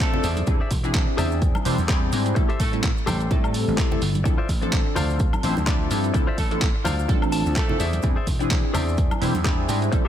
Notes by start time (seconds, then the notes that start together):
Already playing: D4 A4
0.00 A3 F4 A4 C5 D5, kick, clap, closed hi-hat, maracas
0.13 F3 C4 D4 E4 A4, low conga
0.23 E2 G#4 C5 D5 E5, open hi-hat, maracas
0.37 closed hi-hat, high conga, maracas
0.47 E2 G3 C4 D4 E4 G#4, kick, closed hi-hat, maracas
0.60 G#4 C5 D5 E5
0.71 E1, kick, open hi-hat, maracas
0.84 C4 D4 E4 G#4, muted clean electric guitar stroke, closed hi-hat, maracas
0.94 muted clean electric guitar stroke, kick, clap, closed hi-hat, maracas
1.07 muted clean electric guitar stroke
1.17 E2 G#4 C5 D5 E5, open hi-hat, low conga, high woodblock, maracas
1.32 maracas
1.42 kick, closed hi-hat, maracas
1.55 high conga, high woodblock, maracas
1.65 E1 G3 C4 D4 E4 C5, open hi-hat, maracas
1.78 E2, high conga, maracas
1.88 G3 C4 D4 E4 G#4 C5 D5 G5, kick, clap, closed hi-hat, maracas
2.12 G#2 G3 C4 D4 E4 G#4, open hi-hat, maracas
2.26 closed hi-hat, maracas
2.35 A1 G3 A3 C4 E4 A4, muted clean electric guitar stroke, kick, closed hi-hat, maracas
2.49 G4 A4 C5 E5, closed hi-hat
2.60 A2 A3 A4, kick, open hi-hat, high conga, maracas
2.72 G3 A3 C4 E4 A4, muted clean electric guitar stroke, closed hi-hat, maracas
2.83 muted clean electric guitar stroke, kick, clap, closed hi-hat, maracas
2.96 muted clean electric guitar stroke, maracas
3.06 A1 G4 A4 C5 G5, open hi-hat, high conga, low conga, high woodblock, maracas
3.20 closed hi-hat, maracas
3.30 A2 G3 A3 C4 E4 A4, kick, closed hi-hat, high conga, maracas
3.44 high woodblock, maracas
3.54 open hi-hat, maracas
3.68 A1, maracas
3.77 G4 A4 C5 E5, kick, clap, closed hi-hat, maracas
3.91 G3 A3 C4 E4 A4, closed hi-hat, low conga
4.02 G1, open hi-hat, maracas
4.15 closed hi-hat, high conga, maracas
4.24 D2 F3 C4 D4 E4 A4, muted clean electric guitar stroke, kick, closed hi-hat, maracas
4.38 F4 C5 D5 E5
4.49 A1, kick, open hi-hat, maracas
4.61 F3 C4 D4 A4, muted clean electric guitar stroke, closed hi-hat, maracas
4.72 muted clean electric guitar stroke, kick, clap, closed hi-hat, maracas
4.86 muted clean electric guitar stroke
4.95 D2 F4 C5 D5 F5, open hi-hat, low conga, high woodblock, maracas
5.10 maracas
5.19 kick, closed hi-hat, maracas
5.33 high conga, high woodblock, maracas
5.43 A1 F3 C4 D4 E4 C5, open hi-hat, maracas
5.57 D2, high conga, maracas
5.66 F3 C4 D4 E4 F4 A4 C5 D5 E5, kick, clap, closed hi-hat, maracas
5.91 G2 F3 C4 D4 E4 A4, open hi-hat, maracas
6.04 closed hi-hat, maracas
6.14 D2 F3 C4 D4 E4 A4, muted clean electric guitar stroke, kick, closed hi-hat, maracas
6.27 F4 C5 D5 E5
6.38 A1 A3 A4, kick, open hi-hat, high conga, maracas
6.51 F3 C4 D4 E4 A4, muted clean electric guitar stroke, closed hi-hat, maracas
6.61 muted clean electric guitar stroke, kick, clap, closed hi-hat, maracas
6.75 muted clean electric guitar stroke
6.84 D2 F4 C5 D5 F5, open hi-hat, high conga, low conga, high woodblock, maracas
6.99 maracas
7.08 F3 C4 D4 A4, kick, closed hi-hat, high conga, maracas
7.22 high woodblock, maracas
7.32 A5, open hi-hat, maracas
7.46 D2, maracas
7.55 A3 F4 A4 C5 D5 E5 F5, kick, clap, closed hi-hat, maracas
7.69 F3 C4 D4 E4 A4, low conga
7.79 E2 G#4 C5 D5 E5, open hi-hat, maracas
7.93 closed hi-hat, high conga, maracas
8.03 E2 G3 C4 D4 E4 G#4, kick, closed hi-hat, maracas
8.16 G#4 C5 D5 E5
8.27 E1, kick, open hi-hat, maracas
8.39 C4 D4 E4 G#4, muted clean electric guitar stroke, closed hi-hat, maracas
8.50 muted clean electric guitar stroke, kick, clap, closed hi-hat, maracas
8.63 muted clean electric guitar stroke
8.74 E2 G#4 C5 D5 E5, open hi-hat, low conga, high woodblock, maracas
8.89 maracas
8.98 kick, closed hi-hat, maracas
9.11 high conga, high woodblock, maracas
9.21 E1 G3 C4 D4 E4 C5, open hi-hat, maracas
9.34 E2, high conga, maracas
9.44 G3 C4 D4 E4 G#4 C5 D5 E5, kick, clap, closed hi-hat, maracas
9.68 G#2 G3 C4 D4 E4 G#4, open hi-hat, maracas
9.82 closed hi-hat, maracas
9.92 A1 G3 A3 C4 E4 A4, muted clean electric guitar stroke, kick, closed hi-hat, maracas
10.05 G4